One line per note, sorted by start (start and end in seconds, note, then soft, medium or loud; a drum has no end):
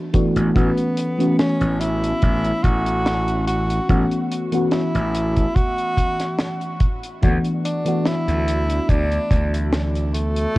0.00 0.10 B3 medium
0.00 0.11 D4 medium
0.00 0.11 F#4 medium
0.13 0.51 E3 loud
0.13 0.51 A3 medium
0.13 0.51 B3 medium
0.13 0.51 D4 medium
0.13 0.52 F#4 loud
0.13 kick loud
0.13 closed hi-hat loud
0.36 0.49 A1 medium
0.36 closed hi-hat medium
0.55 0.70 A1 loud
0.55 1.14 E3 medium
0.55 1.14 A3 medium
0.55 1.14 B3 medium
0.55 1.35 B3 medium
0.55 1.15 C#4 medium
0.55 1.15 F#4 medium
0.55 kick loud
0.55 closed hi-hat medium
0.78 closed hi-hat soft
0.97 closed hi-hat loud
1.18 3.84 E3 medium
1.18 3.84 A3 medium
1.18 3.84 B3 medium
1.18 3.85 C#4 medium
1.18 3.85 F#4 medium
1.18 closed hi-hat medium
1.39 1.81 C#4 loud
1.39 snare loud
1.39 closed hi-hat medium
1.61 2.12 A1 medium
1.61 closed hi-hat soft
1.80 2.65 E4 loud
1.80 closed hi-hat loud
2.04 closed hi-hat medium
2.22 2.51 A1 medium
2.22 kick loud
2.22 closed hi-hat medium
2.45 closed hi-hat soft
2.64 3.78 A1 medium
2.64 3.47 F#4 loud
2.64 kick loud
2.64 closed hi-hat medium
2.87 closed hi-hat medium
3.06 snare loud
3.06 closed hi-hat medium
3.28 closed hi-hat soft
3.47 4.27 F#4 loud
3.47 closed hi-hat loud
3.70 closed hi-hat medium
3.88 4.04 A1 loud
3.88 4.47 E3 medium
3.88 4.48 A3 medium
3.88 4.48 B3 medium
3.88 4.48 C#4 medium
3.88 4.48 F#4 medium
3.88 kick loud
3.88 closed hi-hat medium
4.11 closed hi-hat soft
4.32 closed hi-hat medium
4.51 6.78 E3 medium
4.51 6.78 A3 medium
4.51 6.78 B3 medium
4.51 6.79 C#4 medium
4.51 6.79 F#4 medium
4.51 closed hi-hat medium
4.71 5.57 E4 loud
4.71 snare loud
4.71 closed hi-hat medium
4.95 5.45 A1 medium
4.95 closed hi-hat soft
5.14 closed hi-hat medium
5.36 kick medium
5.36 closed hi-hat medium
5.55 6.81 F#4 loud
5.55 kick loud
5.55 closed hi-hat medium
5.78 closed hi-hat soft
5.97 kick medium
5.97 closed hi-hat medium
6.19 snare soft
6.19 closed hi-hat medium
6.38 snare loud
6.38 closed hi-hat medium
6.61 closed hi-hat soft
6.80 kick loud
6.80 closed hi-hat medium
7.03 closed hi-hat medium
7.22 7.37 D2 loud
7.22 7.81 E3 medium
7.22 7.81 A3 medium
7.22 7.81 B3 medium
7.22 7.81 D4 medium
7.22 7.81 F#4 medium
7.22 kick loud
7.22 closed hi-hat medium
7.44 closed hi-hat soft
7.65 8.08 D4 loud
7.65 closed hi-hat loud
7.85 10.50 E3 medium
7.85 10.51 A3 medium
7.85 10.51 B3 medium
7.85 10.52 D4 medium
7.85 10.52 F#4 medium
7.85 closed hi-hat medium
8.05 8.91 E4 loud
8.05 snare loud
8.05 closed hi-hat medium
8.28 8.78 D2 medium
8.28 closed hi-hat soft
8.48 closed hi-hat loud
8.70 closed hi-hat medium
8.89 9.17 D2 medium
8.89 9.73 D4 loud
8.89 kick loud
8.89 closed hi-hat medium
9.12 closed hi-hat soft
9.31 10.45 D2 medium
9.31 kick medium
9.31 closed hi-hat medium
9.54 closed hi-hat medium
9.73 snare loud
9.73 closed hi-hat medium
9.96 closed hi-hat soft
10.14 10.58 A3 loud
10.14 closed hi-hat medium
10.36 closed hi-hat medium
10.55 10.58 E3 medium